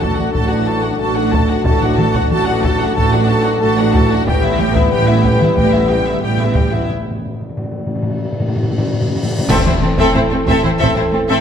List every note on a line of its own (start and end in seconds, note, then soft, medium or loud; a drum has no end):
0.00 0.27 A1 medium
0.00 0.27 A2 medium
0.00 4.23 F#3 soft
0.00 4.23 A3 medium
0.00 4.23 D4 medium
0.00 0.18 F#4 soft
0.00 4.23 A4 medium
0.00 0.18 A4 soft
0.00 0.18 A5 soft
0.00 taiko medium
0.16 0.35 D4 medium
0.16 0.34 F#4 soft
0.16 0.33 F#5 soft
0.16 taiko mid soft
0.33 0.92 A1 medium
0.33 0.92 A2 medium
0.33 0.50 F#4 soft
0.33 0.49 A4 medium
0.33 0.49 A5 medium
0.33 taiko medium
0.48 0.67 D4 soft
0.48 0.66 F#4 soft
0.48 0.67 F#5 soft
0.65 0.84 F#4 medium
0.65 0.82 A4 soft
0.65 0.83 A5 medium
0.83 1.00 D4 soft
0.83 1.00 F#4 soft
0.83 1.00 F#5 soft
1.00 1.58 A1 medium
1.00 1.58 A2 medium
1.00 1.15 F#4 medium
1.00 1.15 A4 soft
1.00 1.15 A5 soft
1.16 1.32 D4 soft
1.16 1.33 F#4 soft
1.16 1.32 F#5 medium
1.32 1.49 F#4 medium
1.32 1.49 A4 soft
1.32 1.49 A5 medium
1.32 taiko medium
1.49 1.66 D4 soft
1.49 1.66 F#4 medium
1.49 1.65 F#5 medium
1.65 2.23 A1 medium
1.65 2.23 A2 medium
1.65 1.81 F#4 medium
1.65 1.81 A4 medium
1.65 1.80 A5 medium
1.65 taiko medium
1.82 1.98 D4 medium
1.82 1.99 F#4 medium
1.82 1.98 F#5 soft
1.82 taiko mid soft
1.98 2.15 F#4 medium
1.98 2.15 A4 medium
1.98 2.15 A5 medium
1.98 taiko mid medium
2.15 2.31 D4 medium
2.15 2.31 F#4 medium
2.15 2.31 F#5 medium
2.15 taiko medium
2.30 2.88 A1 medium
2.30 2.88 A2 medium
2.30 2.46 F#4 medium
2.30 2.47 A4 medium
2.30 2.47 A5 medium
2.30 taiko mid medium
2.47 2.63 D4 medium
2.47 2.64 F#4 medium
2.47 2.63 F#5 medium
2.63 2.79 F#4 medium
2.63 2.80 A4 medium
2.63 2.80 A5 medium
2.63 taiko medium
2.80 2.96 D4 medium
2.80 2.97 F#4 medium
2.80 2.96 F#5 medium
2.80 taiko mid soft
2.96 3.54 A1 medium
2.96 3.54 A2 medium
2.96 3.11 F#4 medium
2.96 3.11 A4 medium
2.96 3.12 A5 medium
2.96 taiko medium
3.12 3.28 D4 medium
3.12 3.29 F#4 medium
3.12 3.29 F#5 medium
3.28 3.45 F#4 medium
3.28 3.46 A4 medium
3.28 3.45 A5 medium
3.45 3.62 D4 medium
3.45 3.62 F#4 medium
3.45 3.62 F#5 medium
3.61 4.19 A1 medium
3.61 4.19 A2 medium
3.61 3.77 F#4 medium
3.61 3.77 A4 medium
3.61 3.76 A5 medium
3.78 3.94 D4 medium
3.78 3.95 F#4 medium
3.78 3.95 F#5 medium
3.94 4.10 F#4 medium
3.94 4.11 A4 medium
3.94 4.11 A5 medium
3.94 taiko medium
4.11 4.27 D4 medium
4.11 4.27 F#4 medium
4.11 4.27 F#5 medium
4.26 4.84 A1 medium
4.26 4.84 A2 medium
4.26 4.33 A2 soft
4.26 6.84 E3 medium
4.26 6.88 G3 medium
4.26 4.42 G3 medium
4.26 6.84 B3 medium
4.26 4.42 G4 medium
4.26 6.84 B4 medium
4.26 4.42 G5 medium
4.26 taiko medium
4.43 4.59 B3 medium
4.43 4.59 E4 medium
4.43 4.60 E5 medium
4.43 taiko mid soft
4.57 4.63 A2 soft
4.57 4.76 G3 medium
4.57 4.76 G4 medium
4.57 4.76 G5 medium
4.57 taiko mid medium
4.71 4.78 A2 soft
4.76 4.92 B3 medium
4.76 4.92 E4 medium
4.76 4.92 E5 medium
4.76 taiko medium
4.87 4.93 A2 soft
4.92 5.50 A1 medium
4.92 5.50 A2 medium
4.92 5.01 A2 soft
4.92 5.08 G3 medium
4.92 5.07 G4 medium
4.92 5.07 G5 medium
4.92 taiko mid medium
5.02 5.09 A2 soft
5.08 5.25 B3 medium
5.08 5.25 E4 medium
5.08 5.25 E5 medium
5.24 5.41 G3 medium
5.24 5.41 G4 medium
5.24 5.41 G5 medium
5.24 taiko medium
5.33 5.39 A2 soft
5.41 5.58 B3 medium
5.41 5.58 E4 medium
5.41 5.58 E5 medium
5.41 taiko mid medium
5.55 6.15 A1 medium
5.55 5.61 A2 soft
5.55 6.15 A2 medium
5.55 5.73 G3 medium
5.55 5.73 G4 medium
5.55 taiko medium
5.59 5.68 A2 soft
5.59 5.73 G5 medium
5.70 5.75 A2 soft
5.74 5.83 A2 soft
5.74 5.90 B3 medium
5.74 5.90 E4 medium
5.74 5.90 E5 medium
5.84 5.91 A2 soft
5.90 5.98 A2 soft
5.90 6.06 G3 medium
5.90 6.06 G4 soft
5.90 6.07 G5 medium
5.99 6.06 A2 soft
6.06 6.13 A2 soft
6.06 6.23 B3 medium
6.06 6.23 E4 medium
6.06 6.23 E5 medium
6.14 6.21 A2 medium
6.22 6.81 A1 medium
6.22 6.28 A2 medium
6.22 6.80 A2 medium
6.22 6.38 G3 soft
6.22 6.38 G4 medium
6.22 6.38 G5 medium
6.29 6.36 A2 soft
6.37 6.42 A2 medium
6.37 6.56 B3 soft
6.37 6.55 E4 soft
6.41 6.49 A2 soft
6.41 6.56 E5 medium
6.50 6.57 A2 medium
6.55 6.65 A2 medium
6.55 6.73 G3 soft
6.55 6.71 G4 soft
6.55 6.72 G5 medium
6.55 taiko medium
6.66 6.72 A2 medium
6.71 6.80 A2 medium
6.71 6.89 B3 soft
6.71 6.88 E4 soft
6.71 6.89 E5 soft
6.81 6.88 A2 medium
6.88 6.95 A2 medium
6.88 cymbal swell medium
6.96 7.02 A2 soft
7.04 7.09 A2 medium
7.10 7.17 A2 medium
7.18 7.24 A2 medium
7.26 7.32 A2 medium
7.34 7.40 A2 soft
7.41 7.48 A2 medium
7.49 7.56 A2 medium
7.57 7.63 A2 medium
7.64 7.70 A2 medium
7.71 7.78 A2 medium
7.79 7.85 A2 medium
7.86 7.94 A2 medium
7.95 8.01 A2 medium
8.02 8.09 A2 medium
8.10 8.16 A2 medium
8.18 8.24 A2 medium
8.25 8.31 A2 medium
8.32 8.39 A2 medium
8.40 8.47 A2 medium
8.48 8.54 A2 medium
8.56 8.62 A2 medium
8.63 8.69 A2 medium
8.71 8.77 A2 medium
8.78 8.84 A2 medium
8.86 8.92 A2 medium
8.93 9.00 A2 medium
9.01 9.07 A2 medium
9.08 9.15 A2 medium
9.16 9.22 A2 medium
9.23 9.30 A2 medium
9.31 9.37 A2 medium
9.38 9.45 A2 loud
9.49 9.56 A1 medium
9.49 9.56 A2 medium
9.49 10.44 A2 loud
9.49 11.41 E3 medium
9.49 11.41 A3 medium
9.49 11.41 C4 medium
9.49 9.65 C4 medium
9.49 11.41 A4 medium
9.49 9.65 A4 medium
9.49 9.65 E5 medium
9.49 concert bass drum medium
9.49 taiko loud
9.49 crash medium
9.49 impact medium
9.66 9.72 A2 medium
9.66 9.73 C4 medium
9.66 9.73 E4 medium
9.66 9.74 C5 medium
9.66 taiko mid soft
9.82 9.89 A1 medium
9.82 9.89 A2 medium
9.82 9.89 C4 soft
9.82 9.89 C4 medium
9.82 9.89 A4 medium
9.82 taiko mid medium
9.98 10.05 A2 medium
9.98 10.14 C4 loud
9.98 10.14 A4 loud
9.98 10.14 E5 medium
9.98 taiko loud
10.15 10.22 A1 medium
10.15 10.21 A2 medium
10.15 10.22 C4 medium
10.15 10.22 E4 medium
10.15 10.21 C5 medium
10.15 taiko mid medium
10.31 10.38 A2 medium
10.31 10.38 C4 medium
10.31 10.39 C4 medium
10.31 10.38 A4 medium
10.47 10.54 A1 loud
10.47 10.54 A2 medium
10.47 10.63 C4 medium
10.47 10.64 A4 medium
10.47 10.63 E5 medium
10.47 taiko medium
10.63 10.70 A2 medium
10.63 10.71 C4 medium
10.63 10.71 E4 medium
10.63 10.71 C5 medium
10.63 taiko mid medium
10.79 10.88 A1 medium
10.79 10.87 A2 medium
10.79 10.96 C4 medium
10.79 10.95 A4 medium
10.79 10.95 E5 medium
10.79 taiko medium
10.96 11.02 A2 medium
10.96 11.04 C4 medium
10.96 11.03 E4 medium
10.96 11.03 C5 soft
11.12 11.20 A1 medium
11.12 11.19 A2 medium
11.12 11.20 C4 medium
11.12 11.21 C4 medium
11.12 11.20 A4 medium
11.28 11.36 A2 medium
11.28 11.41 C4 medium
11.28 11.41 A4 medium
11.28 11.41 E5 medium